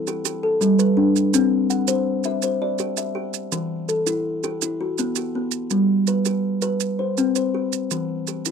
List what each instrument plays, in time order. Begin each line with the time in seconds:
0.07 kalimba G4, maracas
0.25 kalimba G4, maracas
0.43 kalimba A4
0.61 kalimba G3, maracas
0.79 kalimba B4, maracas
0.97 kalimba D4
1.16 maracas
1.34 kalimba C4, maracas
1.70 kalimba F#5, maracas
1.88 kalimba C5, maracas
2.24 kalimba E5, maracas
2.42 kalimba C5, maracas
2.62 kalimba D5
2.78 kalimba G4, maracas
2.97 kalimba E5, maracas
3.15 kalimba G4
3.34 maracas
3.52 kalimba E3, maracas
3.89 kalimba A4, maracas
4.07 kalimba E4, maracas
4.43 kalimba G4, maracas
4.62 kalimba E4, maracas
4.81 kalimba F#4
4.98 kalimba B3, maracas
5.16 kalimba G4, maracas
5.35 kalimba B3
5.51 maracas
5.70 kalimba G3, maracas
6.07 kalimba B4, maracas
6.25 kalimba G4, maracas
6.62 kalimba B4, maracas
6.80 maracas
6.99 kalimba C5
7.17 kalimba C4, maracas
7.35 kalimba C5, maracas
7.54 kalimba G4
7.73 maracas
7.91 kalimba E3, maracas
8.27 kalimba G4, maracas
8.45 kalimba E4, maracas